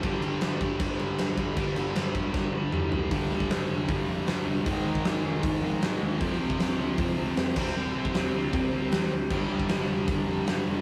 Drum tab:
CC |x-x-x-x-x-x-x-x-|x-x-x-x---------|----------------|----------------|
HH |----------------|----------------|o---o---o---o---|o---o---o---o---|
SD |----o-------o---|----o---o-------|----o-------o---|----o-------o---|
T2 |----------------|------------o---|----------------|----------------|
FT |----------------|--------------o-|----------------|----------------|
BD |o-----o-o-----o-|o-----o-o-------|o--o----o-------|o--o----o-------|

CC |--------------x-|----------------|x---------------|
HH |o---o---o---o---|----o---o---o---|----o---o---o---|
SD |----o-------o---|----o-------o---|----o-------o---|
T2 |----------------|----------------|----------------|
FT |----------------|----------------|----------------|
BD |o--o----o-----o-|---o----o-------|o--o----o-------|